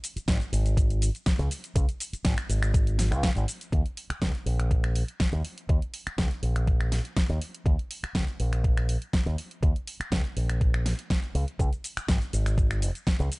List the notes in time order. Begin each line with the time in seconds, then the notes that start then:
0.04 open hi-hat, shaker
0.16 muted fingered electric bass stroke, closed hi-hat, shaker
0.28 G#1, kick, snare, closed hi-hat, shaker
0.41 closed hi-hat, shaker
0.52 G#1, open hi-hat, shaker
0.66 closed hi-hat, shaker
0.77 kick, closed hi-hat, shaker
0.90 closed hi-hat, shaker
1.02 open hi-hat, shaker
1.15 closed hi-hat, shaker
1.26 kick, snare, closed hi-hat, shaker
1.39 C#2, closed hi-hat, shaker
1.51 open hi-hat, shaker
1.64 closed hi-hat, shaker
1.75 C#2, kick, closed hi-hat, shaker
1.89 closed hi-hat, shaker
2.00 open hi-hat, shaker
2.13 muted fingered electric bass stroke, closed hi-hat, shaker
2.25 G#1, kick, snare, closed hi-hat, shaker
2.38 finger snap, closed hi-hat, shaker
2.49 G#1, open hi-hat, shaker
2.63 finger snap, closed hi-hat, shaker
2.74 kick, closed hi-hat, shaker
2.87 closed hi-hat, shaker
2.99 snare, open hi-hat, shaker
3.11 C#2, finger snap, closed hi-hat, shaker
3.23 kick, snare, closed hi-hat, shaker
3.36 G#1, closed hi-hat, shaker
3.48 open hi-hat, shaker
3.61 closed hi-hat, shaker
3.72 D#2, kick, closed hi-hat
3.86 closed hi-hat
3.97 open hi-hat
4.10 finger snap, muted fingered electric bass stroke, closed hi-hat
4.22 C#2, kick, snare, closed hi-hat
4.35 closed hi-hat
4.46 A#1, open hi-hat
4.60 finger snap, closed hi-hat
4.71 kick, closed hi-hat
4.84 finger snap, closed hi-hat
4.96 open hi-hat
5.08 closed hi-hat
5.20 kick, snare, closed hi-hat
5.33 D#2, closed hi-hat
5.45 open hi-hat
5.58 closed hi-hat
5.69 D#2, kick, closed hi-hat
5.82 closed hi-hat
5.94 open hi-hat
6.07 finger snap, muted fingered electric bass stroke, closed hi-hat
6.18 C#2, kick, snare, closed hi-hat
6.31 closed hi-hat
6.43 A#1, open hi-hat
6.56 finger snap, closed hi-hat
6.67 kick, closed hi-hat
6.81 finger snap, closed hi-hat
6.92 snare, open hi-hat
7.05 closed hi-hat
7.17 kick, snare, closed hi-hat
7.29 D#2, closed hi-hat
7.42 open hi-hat
7.55 closed hi-hat
7.66 D#2, kick, closed hi-hat
7.79 closed hi-hat
7.91 open hi-hat
8.03 finger snap, muted fingered electric bass stroke, closed hi-hat
8.15 C#2, kick, snare, closed hi-hat
8.28 closed hi-hat
8.40 A#1, open hi-hat
8.53 finger snap, closed hi-hat
8.64 kick, closed hi-hat
8.78 finger snap, closed hi-hat
8.89 open hi-hat
9.02 closed hi-hat
9.13 kick, snare, closed hi-hat
9.26 D#2, closed hi-hat
9.38 open hi-hat
9.51 closed hi-hat
9.63 D#2, kick, closed hi-hat
9.76 closed hi-hat
9.87 open hi-hat
10.00 finger snap, muted fingered electric bass stroke, closed hi-hat
10.12 C#2, kick, snare, closed hi-hat
10.25 closed hi-hat
10.36 A#1, open hi-hat
10.49 finger snap, closed hi-hat
10.61 kick, closed hi-hat
10.74 finger snap, closed hi-hat
10.86 snare, open hi-hat
10.99 closed hi-hat
11.10 kick, snare, closed hi-hat
11.24 closed hi-hat
11.35 C#2, open hi-hat
11.48 closed hi-hat
11.59 C#2, kick, closed hi-hat, shaker
11.73 closed hi-hat, shaker
11.84 open hi-hat, shaker
11.97 finger snap, muted fingered electric bass stroke, closed hi-hat, shaker
12.08 G#1, kick, snare, closed hi-hat, shaker
12.22 closed hi-hat, shaker
12.33 G#1, open hi-hat, shaker
12.46 finger snap, closed hi-hat, shaker
12.58 kick, closed hi-hat, shaker
12.71 finger snap, closed hi-hat, shaker
12.82 open hi-hat, shaker
12.95 closed hi-hat, shaker
13.07 kick, snare, closed hi-hat, shaker
13.20 C#2, closed hi-hat, shaker
13.32 open hi-hat, shaker